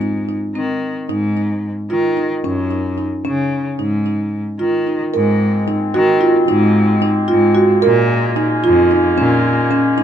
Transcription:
0, 0, Header, 1, 4, 480
1, 0, Start_track
1, 0, Tempo, 539084
1, 978, Time_signature, 5, 3, 24, 8
1, 8935, End_track
2, 0, Start_track
2, 0, Title_t, "Marimba"
2, 0, Program_c, 0, 12
2, 12, Note_on_c, 0, 63, 53
2, 181, Note_off_c, 0, 63, 0
2, 255, Note_on_c, 0, 63, 54
2, 424, Note_off_c, 0, 63, 0
2, 493, Note_on_c, 0, 60, 61
2, 830, Note_off_c, 0, 60, 0
2, 974, Note_on_c, 0, 63, 68
2, 1143, Note_off_c, 0, 63, 0
2, 1217, Note_on_c, 0, 63, 55
2, 1552, Note_off_c, 0, 63, 0
2, 1692, Note_on_c, 0, 65, 64
2, 1862, Note_off_c, 0, 65, 0
2, 1933, Note_on_c, 0, 63, 57
2, 2102, Note_off_c, 0, 63, 0
2, 2175, Note_on_c, 0, 61, 66
2, 2344, Note_off_c, 0, 61, 0
2, 2410, Note_on_c, 0, 63, 53
2, 2580, Note_off_c, 0, 63, 0
2, 2651, Note_on_c, 0, 63, 58
2, 2821, Note_off_c, 0, 63, 0
2, 2891, Note_on_c, 0, 61, 65
2, 3229, Note_off_c, 0, 61, 0
2, 3376, Note_on_c, 0, 63, 65
2, 3544, Note_off_c, 0, 63, 0
2, 3613, Note_on_c, 0, 63, 53
2, 3950, Note_off_c, 0, 63, 0
2, 4090, Note_on_c, 0, 65, 60
2, 4260, Note_off_c, 0, 65, 0
2, 4335, Note_on_c, 0, 63, 54
2, 4504, Note_off_c, 0, 63, 0
2, 4573, Note_on_c, 0, 70, 73
2, 4910, Note_off_c, 0, 70, 0
2, 5055, Note_on_c, 0, 63, 63
2, 5224, Note_off_c, 0, 63, 0
2, 5292, Note_on_c, 0, 66, 76
2, 5462, Note_off_c, 0, 66, 0
2, 5527, Note_on_c, 0, 65, 70
2, 5698, Note_off_c, 0, 65, 0
2, 5772, Note_on_c, 0, 63, 78
2, 6109, Note_off_c, 0, 63, 0
2, 6249, Note_on_c, 0, 63, 70
2, 6420, Note_off_c, 0, 63, 0
2, 6482, Note_on_c, 0, 65, 77
2, 6655, Note_off_c, 0, 65, 0
2, 6719, Note_on_c, 0, 66, 71
2, 6893, Note_off_c, 0, 66, 0
2, 6965, Note_on_c, 0, 70, 87
2, 7304, Note_off_c, 0, 70, 0
2, 7446, Note_on_c, 0, 63, 75
2, 7617, Note_off_c, 0, 63, 0
2, 7690, Note_on_c, 0, 65, 81
2, 7860, Note_off_c, 0, 65, 0
2, 7933, Note_on_c, 0, 63, 67
2, 8102, Note_off_c, 0, 63, 0
2, 8171, Note_on_c, 0, 61, 79
2, 8508, Note_off_c, 0, 61, 0
2, 8645, Note_on_c, 0, 61, 67
2, 8816, Note_off_c, 0, 61, 0
2, 8884, Note_on_c, 0, 63, 74
2, 8935, Note_off_c, 0, 63, 0
2, 8935, End_track
3, 0, Start_track
3, 0, Title_t, "Woodwind section"
3, 0, Program_c, 1, 71
3, 4571, Note_on_c, 1, 60, 75
3, 4575, Note_on_c, 1, 56, 74
3, 4577, Note_on_c, 1, 58, 68
3, 6950, Note_off_c, 1, 60, 0
3, 6970, Note_on_c, 1, 61, 85
3, 8935, Note_off_c, 1, 56, 0
3, 8935, Note_off_c, 1, 58, 0
3, 8935, Note_off_c, 1, 61, 0
3, 8935, End_track
4, 0, Start_track
4, 0, Title_t, "Cello"
4, 0, Program_c, 2, 42
4, 0, Note_on_c, 2, 44, 72
4, 320, Note_off_c, 2, 44, 0
4, 488, Note_on_c, 2, 51, 62
4, 854, Note_off_c, 2, 51, 0
4, 965, Note_on_c, 2, 44, 78
4, 1513, Note_off_c, 2, 44, 0
4, 1691, Note_on_c, 2, 51, 76
4, 2055, Note_off_c, 2, 51, 0
4, 2172, Note_on_c, 2, 42, 76
4, 2717, Note_off_c, 2, 42, 0
4, 2898, Note_on_c, 2, 49, 73
4, 3260, Note_off_c, 2, 49, 0
4, 3375, Note_on_c, 2, 44, 74
4, 3919, Note_off_c, 2, 44, 0
4, 4093, Note_on_c, 2, 51, 67
4, 4457, Note_off_c, 2, 51, 0
4, 4584, Note_on_c, 2, 44, 88
4, 5125, Note_off_c, 2, 44, 0
4, 5302, Note_on_c, 2, 51, 83
4, 5663, Note_off_c, 2, 51, 0
4, 5769, Note_on_c, 2, 44, 94
4, 6315, Note_off_c, 2, 44, 0
4, 6498, Note_on_c, 2, 44, 86
4, 6860, Note_off_c, 2, 44, 0
4, 6976, Note_on_c, 2, 46, 96
4, 7519, Note_off_c, 2, 46, 0
4, 7701, Note_on_c, 2, 41, 84
4, 8061, Note_off_c, 2, 41, 0
4, 8182, Note_on_c, 2, 46, 93
4, 8722, Note_off_c, 2, 46, 0
4, 8902, Note_on_c, 2, 46, 87
4, 8935, Note_off_c, 2, 46, 0
4, 8935, End_track
0, 0, End_of_file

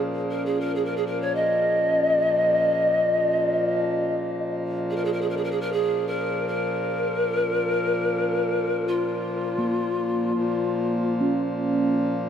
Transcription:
0, 0, Header, 1, 4, 480
1, 0, Start_track
1, 0, Key_signature, -5, "minor"
1, 0, Tempo, 500000
1, 11800, End_track
2, 0, Start_track
2, 0, Title_t, "Pan flute"
2, 0, Program_c, 0, 75
2, 295, Note_on_c, 0, 70, 63
2, 438, Note_on_c, 0, 68, 57
2, 452, Note_off_c, 0, 70, 0
2, 578, Note_on_c, 0, 70, 58
2, 592, Note_off_c, 0, 68, 0
2, 705, Note_off_c, 0, 70, 0
2, 722, Note_on_c, 0, 68, 59
2, 817, Note_on_c, 0, 70, 63
2, 831, Note_off_c, 0, 68, 0
2, 925, Note_on_c, 0, 68, 54
2, 939, Note_off_c, 0, 70, 0
2, 1024, Note_on_c, 0, 70, 58
2, 1038, Note_off_c, 0, 68, 0
2, 1168, Note_on_c, 0, 73, 59
2, 1182, Note_off_c, 0, 70, 0
2, 1297, Note_on_c, 0, 75, 70
2, 1312, Note_off_c, 0, 73, 0
2, 3979, Note_off_c, 0, 75, 0
2, 4708, Note_on_c, 0, 68, 59
2, 4759, Note_on_c, 0, 70, 57
2, 4773, Note_off_c, 0, 68, 0
2, 4846, Note_on_c, 0, 68, 60
2, 4860, Note_off_c, 0, 70, 0
2, 4922, Note_on_c, 0, 70, 61
2, 4937, Note_off_c, 0, 68, 0
2, 5004, Note_on_c, 0, 68, 58
2, 5018, Note_off_c, 0, 70, 0
2, 5083, Note_on_c, 0, 70, 61
2, 5097, Note_off_c, 0, 68, 0
2, 5154, Note_on_c, 0, 68, 60
2, 5168, Note_off_c, 0, 70, 0
2, 5223, Note_on_c, 0, 70, 59
2, 5238, Note_off_c, 0, 68, 0
2, 5291, Note_on_c, 0, 68, 64
2, 5305, Note_off_c, 0, 70, 0
2, 5386, Note_on_c, 0, 70, 63
2, 5400, Note_off_c, 0, 68, 0
2, 5493, Note_on_c, 0, 68, 73
2, 5507, Note_off_c, 0, 70, 0
2, 5828, Note_on_c, 0, 70, 75
2, 5843, Note_off_c, 0, 68, 0
2, 6212, Note_off_c, 0, 70, 0
2, 6218, Note_on_c, 0, 70, 81
2, 8522, Note_on_c, 0, 65, 63
2, 8536, Note_off_c, 0, 70, 0
2, 10953, Note_off_c, 0, 65, 0
2, 11800, End_track
3, 0, Start_track
3, 0, Title_t, "Singing bowl"
3, 0, Program_c, 1, 14
3, 0, Note_on_c, 1, 61, 50
3, 0, Note_on_c, 1, 65, 33
3, 0, Note_on_c, 1, 68, 34
3, 3672, Note_off_c, 1, 61, 0
3, 3698, Note_off_c, 1, 65, 0
3, 3720, Note_off_c, 1, 68, 0
3, 9201, Note_on_c, 1, 58, 42
3, 10759, Note_on_c, 1, 61, 54
3, 11800, Note_off_c, 1, 58, 0
3, 11800, Note_off_c, 1, 61, 0
3, 11800, End_track
4, 0, Start_track
4, 0, Title_t, "Harmonium"
4, 0, Program_c, 2, 20
4, 0, Note_on_c, 2, 46, 47
4, 0, Note_on_c, 2, 53, 51
4, 9905, Note_off_c, 2, 53, 0
4, 9912, Note_off_c, 2, 46, 0
4, 9919, Note_on_c, 2, 53, 54
4, 9927, Note_on_c, 2, 46, 55
4, 11800, Note_off_c, 2, 46, 0
4, 11800, Note_off_c, 2, 53, 0
4, 11800, End_track
0, 0, End_of_file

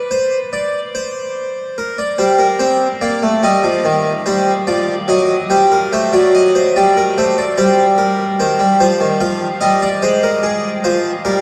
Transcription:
0, 0, Header, 1, 2, 480
1, 0, Start_track
1, 0, Tempo, 825309
1, 1037, Time_signature, 4, 2, 24, 8
1, 6637, End_track
2, 0, Start_track
2, 0, Title_t, "Harpsichord"
2, 0, Program_c, 0, 6
2, 64, Note_on_c, 0, 72, 65
2, 216, Note_off_c, 0, 72, 0
2, 307, Note_on_c, 0, 74, 60
2, 459, Note_off_c, 0, 74, 0
2, 552, Note_on_c, 0, 72, 67
2, 1022, Note_off_c, 0, 72, 0
2, 1036, Note_on_c, 0, 70, 52
2, 1153, Note_off_c, 0, 70, 0
2, 1154, Note_on_c, 0, 74, 51
2, 1270, Note_on_c, 0, 72, 51
2, 1272, Note_on_c, 0, 55, 63
2, 1273, Note_off_c, 0, 74, 0
2, 1389, Note_on_c, 0, 70, 51
2, 1391, Note_off_c, 0, 72, 0
2, 1424, Note_off_c, 0, 55, 0
2, 1509, Note_on_c, 0, 72, 59
2, 1511, Note_off_c, 0, 70, 0
2, 1511, Note_on_c, 0, 60, 72
2, 1662, Note_off_c, 0, 72, 0
2, 1663, Note_off_c, 0, 60, 0
2, 1753, Note_on_c, 0, 74, 50
2, 1754, Note_on_c, 0, 58, 67
2, 1874, Note_off_c, 0, 58, 0
2, 1876, Note_on_c, 0, 57, 65
2, 1905, Note_off_c, 0, 74, 0
2, 1994, Note_on_c, 0, 55, 65
2, 1995, Note_off_c, 0, 57, 0
2, 1998, Note_on_c, 0, 75, 59
2, 2114, Note_off_c, 0, 55, 0
2, 2114, Note_on_c, 0, 53, 65
2, 2234, Note_off_c, 0, 53, 0
2, 2237, Note_on_c, 0, 51, 69
2, 2387, Note_off_c, 0, 51, 0
2, 2464, Note_off_c, 0, 75, 0
2, 2477, Note_on_c, 0, 72, 58
2, 2480, Note_on_c, 0, 55, 76
2, 2627, Note_off_c, 0, 72, 0
2, 2629, Note_off_c, 0, 55, 0
2, 2718, Note_on_c, 0, 53, 69
2, 2718, Note_on_c, 0, 74, 62
2, 2868, Note_off_c, 0, 53, 0
2, 2868, Note_off_c, 0, 74, 0
2, 2955, Note_on_c, 0, 54, 76
2, 2960, Note_on_c, 0, 75, 62
2, 3106, Note_off_c, 0, 54, 0
2, 3109, Note_off_c, 0, 75, 0
2, 3198, Note_on_c, 0, 55, 73
2, 3201, Note_on_c, 0, 72, 58
2, 3317, Note_off_c, 0, 72, 0
2, 3326, Note_on_c, 0, 70, 61
2, 3348, Note_off_c, 0, 55, 0
2, 3440, Note_off_c, 0, 70, 0
2, 3447, Note_on_c, 0, 57, 79
2, 3448, Note_on_c, 0, 72, 66
2, 3560, Note_off_c, 0, 57, 0
2, 3561, Note_off_c, 0, 72, 0
2, 3565, Note_on_c, 0, 54, 74
2, 3568, Note_on_c, 0, 74, 62
2, 3681, Note_off_c, 0, 74, 0
2, 3691, Note_on_c, 0, 75, 62
2, 3802, Note_off_c, 0, 75, 0
2, 3811, Note_on_c, 0, 72, 57
2, 3911, Note_off_c, 0, 54, 0
2, 3921, Note_off_c, 0, 72, 0
2, 3933, Note_on_c, 0, 74, 66
2, 3935, Note_on_c, 0, 55, 75
2, 4042, Note_off_c, 0, 74, 0
2, 4054, Note_on_c, 0, 70, 58
2, 4079, Note_off_c, 0, 55, 0
2, 4163, Note_off_c, 0, 70, 0
2, 4176, Note_on_c, 0, 57, 73
2, 4176, Note_on_c, 0, 72, 63
2, 4283, Note_off_c, 0, 72, 0
2, 4293, Note_on_c, 0, 74, 64
2, 4319, Note_off_c, 0, 57, 0
2, 4402, Note_off_c, 0, 74, 0
2, 4406, Note_on_c, 0, 55, 81
2, 4407, Note_on_c, 0, 72, 65
2, 4553, Note_off_c, 0, 72, 0
2, 4641, Note_on_c, 0, 70, 62
2, 4788, Note_off_c, 0, 70, 0
2, 4866, Note_off_c, 0, 55, 0
2, 4883, Note_on_c, 0, 51, 62
2, 4885, Note_on_c, 0, 72, 58
2, 4995, Note_off_c, 0, 51, 0
2, 4998, Note_on_c, 0, 55, 63
2, 5030, Note_off_c, 0, 72, 0
2, 5113, Note_off_c, 0, 55, 0
2, 5119, Note_on_c, 0, 53, 61
2, 5121, Note_on_c, 0, 72, 79
2, 5233, Note_off_c, 0, 53, 0
2, 5237, Note_on_c, 0, 51, 58
2, 5267, Note_off_c, 0, 72, 0
2, 5352, Note_off_c, 0, 51, 0
2, 5354, Note_on_c, 0, 53, 69
2, 5354, Note_on_c, 0, 77, 78
2, 5502, Note_off_c, 0, 53, 0
2, 5502, Note_off_c, 0, 77, 0
2, 5588, Note_on_c, 0, 75, 72
2, 5592, Note_on_c, 0, 55, 64
2, 5706, Note_off_c, 0, 75, 0
2, 5713, Note_on_c, 0, 74, 75
2, 5741, Note_off_c, 0, 55, 0
2, 5828, Note_off_c, 0, 74, 0
2, 5830, Note_on_c, 0, 72, 75
2, 5833, Note_on_c, 0, 56, 69
2, 5946, Note_off_c, 0, 72, 0
2, 5952, Note_on_c, 0, 70, 67
2, 6067, Note_off_c, 0, 70, 0
2, 6067, Note_on_c, 0, 68, 76
2, 6216, Note_off_c, 0, 68, 0
2, 6295, Note_off_c, 0, 56, 0
2, 6305, Note_on_c, 0, 72, 74
2, 6308, Note_on_c, 0, 53, 69
2, 6455, Note_off_c, 0, 72, 0
2, 6457, Note_off_c, 0, 53, 0
2, 6542, Note_on_c, 0, 70, 76
2, 6543, Note_on_c, 0, 55, 69
2, 6637, Note_off_c, 0, 55, 0
2, 6637, Note_off_c, 0, 70, 0
2, 6637, End_track
0, 0, End_of_file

